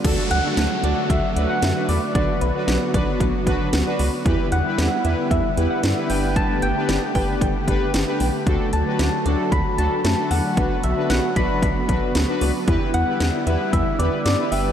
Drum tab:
CC |x-------|--------|--------|--------|
HH |xxxxxxxo|xxxxxxxo|xxxxxxxo|xxxoxxxo|
SD |--o---o-|--o---o-|--o---o-|--o---o-|
BD |o---o---|o--ooo--|o---o---|o--ooo--|

CC |--------|--------|--------|
HH |xxxxxxxo|xxxxxxxo|xxxxxxxo|
SD |--o---o-|--o---o-|--o---o-|
BD |o---o---|o--ooo--|o---o---|